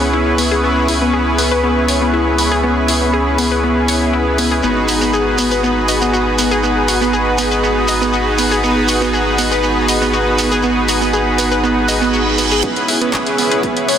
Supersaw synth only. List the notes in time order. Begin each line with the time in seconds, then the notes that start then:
Already playing: B3 C#4 E4 G#4 B4
0.63 B3 C#4 E4 G#4 B4
4.63 B3 D#4 F#4 G#4 B4
8.63 B3 D#4 F#4 G#4 B4
12.63 B3 C#4 E4 G#4 B4
12.76 B3 C#4 E4 G#4 B4
13.01 B3 C#4 E4 G#4 B4
13.13 B3 C#4 E4 G#4 B4
13.38 B3 C#4 E4 G#4 B4
13.51 B3 C#4 E4 G#4 B4
13.63 B3 C#4 E4 G#4 B4
13.76 B3 C#4 E4 G#4 B4